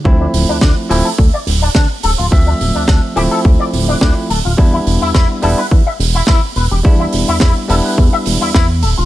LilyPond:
<<
  \new Staff \with { instrumentName = "Clean electric guitar" } { \time 4/4 \key d \dorian \tempo 4 = 106 r16 d'16 r16 d'16 d'16 r16 g'16 a'16 r16 d''16 r16 d'16 d'16 r16 a'16 f'16 | r16 d'16 r16 d'16 d'16 r16 g'16 a'16 r16 d''16 r16 d'16 d'16 r16 a'16 f'16 | r16 e'16 r16 e'16 e'16 r16 a'16 b'16 r16 e''16 r16 e'16 e'16 r16 b'16 g'16 | r16 e'16 r16 e'16 e'16 r16 a'16 b'16 r16 e''16 r16 e'16 e'16 r16 a'16 f'16 | }
  \new Staff \with { instrumentName = "Tine electric piano" } { \time 4/4 \key d \dorian <f a c' e'>4. <f a c' e'>8 r2 | <f a c' e''>4. <f a c' e'>4. <f a c' e'>8 r8 | <g b d' e'>4. <g b d' e'>8 r2 | <g b d' e'>4. <g b d' e'>4. r4 | }
  \new Staff \with { instrumentName = "Analog synth bass" } { \clef bass \time 4/4 \key d \dorian d,8 d,,16 d,16 d,16 r16 d,,16 r16 d,16 r16 d,,8 d,16 r16 d,,16 d,,16 | d,8 d,,16 d,16 d,16 r16 d,,16 r16 d,16 r16 d,,8 d,16 r16 d,,16 d,,16 | e,8 e,,16 e,16 e,16 r16 e,,16 r16 e,16 r16 e,,8 e,16 r16 e,,16 e,,16 | e,8 e,,16 e,16 e,16 r16 e,,16 r16 e,16 r16 e,,16 e,16 e,8 d,,16 d,,16 | }
  \new DrumStaff \with { instrumentName = "Drums" } \drummode { \time 4/4 bd8 hho8 <bd sn>8 hho8 bd8 hho8 <bd sn>8 hho8 | bd8 hho8 <bd sn>8 hho8 bd8 hho8 <bd sn>8 hho8 | bd8 hho8 <bd sn>8 hho8 bd8 hho8 <bd sn>8 hho8 | bd8 hho8 <bd sn>8 hho8 bd8 hho8 <bd sn>8 hho8 | }
>>